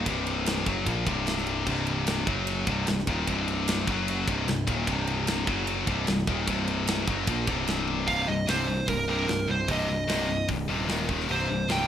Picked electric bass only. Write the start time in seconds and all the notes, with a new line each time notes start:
0.06 C1
0.67 F#1
0.86 A#1
1.07 C1
1.67 C1
2.27 F#1
2.67 C1
2.88 C1
3.07 D#1
3.27 C1
3.88 F#1
4.27 C1
4.47 C1
4.67 D#1
4.87 C1
5.47 F#1
5.87 C1
6.08 C1
6.27 D#1
6.47 C1
7.08 F#1
7.27 A#1
7.48 C1
8.08 C1
8.28 C1
8.48 C1
8.88 C1
9.08 C1
9.28 C1
9.48 C1
9.69 C1
9.89 C1
10.08 C1
10.49 C1
10.69 D#1
10.89 D#1
11.09 D#1
11.29 C1
11.49 C1
11.69 C1